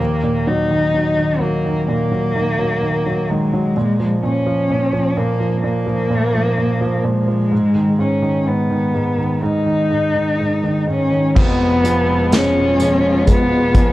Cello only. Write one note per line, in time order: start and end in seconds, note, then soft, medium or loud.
0.00 0.49 A#3 medium
0.47 1.43 D#4 medium
1.41 1.88 A#3 medium
1.88 3.32 A#3 medium
3.30 4.23 G#3 medium
4.24 5.19 C#4 medium
5.17 5.63 A#3 medium
5.64 7.07 A#3 medium
7.06 8.01 G#3 medium
8.00 8.49 C#4 medium
8.47 9.45 B3 medium
9.43 10.88 D#4 medium
10.90 11.34 C#4 medium
11.38 12.36 B3 loud
12.34 13.28 C#4 medium
13.29 13.93 B3 medium